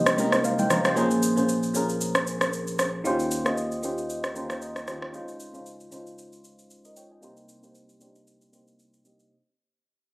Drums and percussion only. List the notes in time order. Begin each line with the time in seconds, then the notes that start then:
0.06 cross-stick, shaker
0.18 high conga, shaker
0.32 cross-stick, shaker
0.44 high conga, shaker
0.59 high conga, shaker
0.70 cross-stick, high conga, low conga, shaker
0.85 cross-stick, shaker
0.96 shaker
1.11 shaker
1.23 shaker
1.37 shaker
1.49 shaker
1.63 shaker
1.75 shaker
1.89 shaker
2.01 shaker
2.15 cross-stick, shaker
2.27 shaker
2.41 cross-stick, shaker
2.53 shaker
2.67 shaker
2.79 cross-stick, shaker
3.05 shaker
3.19 shaker
3.31 shaker
3.46 cross-stick, shaker
3.57 shaker
3.72 shaker
3.83 shaker
3.98 shaker
4.10 shaker
4.24 cross-stick, shaker
4.36 shaker
4.50 cross-stick, shaker
4.62 shaker
4.76 cross-stick, shaker
4.88 cross-stick, shaker
5.02 cross-stick
5.14 shaker
5.28 shaker
5.40 shaker
5.54 shaker
5.66 shaker
5.80 shaker
5.92 shaker
6.07 shaker
6.18 shaker
6.32 shaker
6.44 shaker
6.59 shaker
6.70 shaker
6.85 shaker
6.96 shaker
7.23 shaker
7.37 shaker
7.49 shaker
7.63 shaker
7.75 shaker
7.89 shaker
8.01 shaker
8.15 shaker
8.27 shaker
8.41 shaker
8.53 shaker
8.68 shaker
8.79 shaker
8.94 shaker
9.05 shaker
9.19 shaker